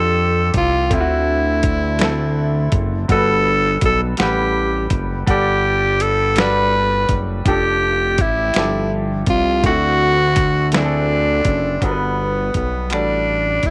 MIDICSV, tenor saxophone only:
0, 0, Header, 1, 2, 480
1, 0, Start_track
1, 0, Key_signature, 1, "major"
1, 0, Tempo, 727273
1, 600, Time_signature, 6, 3, 24, 8
1, 9044, End_track
2, 0, Start_track
2, 0, Title_t, "Tenor saxophone"
2, 0, Program_c, 0, 66
2, 0, Note_on_c, 0, 69, 117
2, 342, Note_off_c, 0, 69, 0
2, 380, Note_on_c, 0, 65, 93
2, 624, Note_on_c, 0, 64, 83
2, 634, Note_off_c, 0, 65, 0
2, 1812, Note_off_c, 0, 64, 0
2, 2057, Note_on_c, 0, 69, 108
2, 2502, Note_off_c, 0, 69, 0
2, 2544, Note_on_c, 0, 69, 93
2, 2647, Note_off_c, 0, 69, 0
2, 2782, Note_on_c, 0, 67, 80
2, 3225, Note_off_c, 0, 67, 0
2, 3500, Note_on_c, 0, 67, 96
2, 3973, Note_on_c, 0, 69, 97
2, 3983, Note_off_c, 0, 67, 0
2, 4219, Note_on_c, 0, 71, 106
2, 4229, Note_off_c, 0, 69, 0
2, 4749, Note_off_c, 0, 71, 0
2, 4937, Note_on_c, 0, 67, 95
2, 5421, Note_on_c, 0, 64, 86
2, 5431, Note_off_c, 0, 67, 0
2, 5890, Note_off_c, 0, 64, 0
2, 6136, Note_on_c, 0, 65, 96
2, 6351, Note_off_c, 0, 65, 0
2, 6377, Note_on_c, 0, 66, 110
2, 7062, Note_off_c, 0, 66, 0
2, 7093, Note_on_c, 0, 62, 91
2, 7817, Note_on_c, 0, 59, 72
2, 7827, Note_off_c, 0, 62, 0
2, 8288, Note_off_c, 0, 59, 0
2, 8293, Note_on_c, 0, 59, 72
2, 8510, Note_off_c, 0, 59, 0
2, 8537, Note_on_c, 0, 62, 83
2, 9016, Note_on_c, 0, 64, 88
2, 9026, Note_off_c, 0, 62, 0
2, 9044, Note_off_c, 0, 64, 0
2, 9044, End_track
0, 0, End_of_file